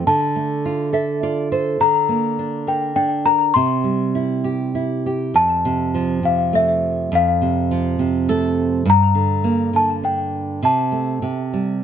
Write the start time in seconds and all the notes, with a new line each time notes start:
0.07 D3 A5
0.36 A3
0.65 F4
0.93 A4 E5
1.23 F4 D5
1.52 A4 C5
1.80 D3 A#5
2.09 A#3
2.39 D4
2.67 A#4 G5
2.96 D4 G5
3.25 A#4 A#5
3.54 C3 C6
3.84 G3
4.15 E4
4.44 G4
4.75 E4
5.06 G4
5.34 F2 A5
5.65 C3
5.94 F3
6.23 C3 F5
6.53 A3 E5
7.12 F2 F5
7.42 C3
7.71 F3
7.99 C3
8.29 A3 A4
8.85 G2
8.90 A#5
9.15 D3
9.44 A#3
9.73 D3 A5
10.04 D4 G5
10.63 C3 A5
10.92 A3
11.22 C3
11.54 G3